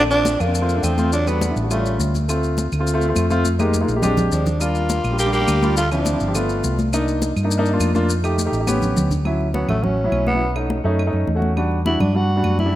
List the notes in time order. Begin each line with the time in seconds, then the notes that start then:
Already playing: A#1 A3 C4 D4
0.11 F3 D4, high conga, maracas
0.25 high conga, maracas
0.40 F2 D3 A#3, high conga, claves, maracas
0.47 A3 C4 D4
0.54 high conga, maracas
0.61 A3 C4 F4
0.69 high conga, maracas
0.76 A3 C4 D4
0.83 E2 F3 C4, high conga, claves, maracas
0.97 A3 C4 F4, high conga, maracas
1.13 F#3 D4, maracas
1.27 D3 G3 B3 D4 F#4, high conga, claves, maracas
1.41 high conga, maracas
1.49 G3 D4 E4
1.56 A1, maracas
1.63 G3 D4 F#4
1.70 C#3 G3 A3 C#4 F4, high conga, claves, maracas
1.86 high conga, maracas
2.00 D2, high conga, maracas
2.15 high conga, maracas
2.28 A3 C4 F4, high conga, claves, maracas
2.43 high conga, maracas
2.58 high conga, maracas
2.72 D2, high conga, claves, maracas
2.79 A3 C4 F4
2.87 high conga, maracas
2.94 A3 C4 F4
3.02 high conga, maracas
3.08 A3 C4 F4
3.16 F2, high conga, claves, maracas
3.30 A3 C4 F4, high conga, maracas
3.45 high conga, maracas
3.59 G#3 A#3 D#4 G4, high conga, claves, maracas
3.74 high conga, maracas
3.80 G#3 A#3 D#4 F4
3.88 A#1, maracas
3.95 G#3 A#3 D#4 G4
4.02 G#3 C4 D4 G4, low conga, claves, maracas
4.17 low conga, maracas
4.32 D#2 F3 D4, maracas
4.46 low conga, maracas
4.60 G3 A#3 D4 F4, high conga, claves, maracas
4.75 high conga, maracas
4.89 high conga, maracas
5.04 A#1, high conga, claves, maracas
5.11 G3 D4 G4
5.18 A#3 G4, high conga, maracas
5.26 G3 D4 G4
5.33 A#3 G4, high conga, maracas
5.40 G3 D4 G4
5.48 D2, high conga, claves, maracas
5.62 G3 D4 F4, high conga, maracas
5.77 A3 F4, high conga, maracas
5.91 F3 C4 D4 E4, high conga, claves, maracas
6.06 high conga, maracas
6.13 F3 C4 E4
6.20 G1, maracas
6.27 F3 C4 G4
6.35 A3 B3 F4, high conga, claves, maracas
6.49 high conga, maracas
6.64 C2, high conga, maracas
6.79 high conga, maracas
6.93 A#3 D4 D#4, high conga, claves, maracas
7.08 high conga, maracas
7.22 high conga, maracas
7.36 G2, high conga, claves, maracas
7.43 A#3 D4 D#4
7.51 high conga, maracas
7.58 A#3 D4 D#4
7.66 high conga, maracas
7.72 A#3 D4 F4
7.80 F2, high conga, claves, maracas
7.94 A#3 D4 F4, high conga, maracas
8.09 high conga, maracas
8.23 A3 D#4 G4, high conga, claves, maracas
8.38 high conga, maracas
8.45 A3 D#4 G4
8.52 A1, maracas
8.60 A3 D#4 G4
8.67 B3 C#4 G4, high conga, claves, maracas
8.82 low conga, maracas
8.96 D2, low conga, maracas
9.11 low conga, maracas
9.25 F#3 C#4 E4, high conga, claves
9.40 high conga
9.54 F#3 B3 C#4 F#4, high conga
9.68 A1 A3, high conga, low conga, claves
9.83 F#3 C#4 F#4, high conga, low conga
9.97 high conga
10.04 F#3 C#4 E4
10.12 B1, high conga, claves
10.27 B3, high conga
10.34 F#3 C#4 E4
10.41 high conga
10.55 A3 C#4 D#4, high conga, claves
10.70 high conga
10.84 F#2 A3 C#4 D#4
10.99 high conga, claves
11.06 A3 C#4 D#4
11.13 F#2, high conga
11.27 E2, high conga
11.35 A3 C#4 F#4
11.42 high conga
11.57 G3 D4 F#4, high conga, claves
11.71 high conga
11.86 G3 D4 E4 F#4, high conga
12.00 G2 D4, high conga, low conga, claves
12.15 G3 D4 F#4, high conga
12.30 high conga
12.36 G3 D4 F#4
12.44 F#2, high conga, claves
12.59 E4, high conga
12.65 G3 D4 E4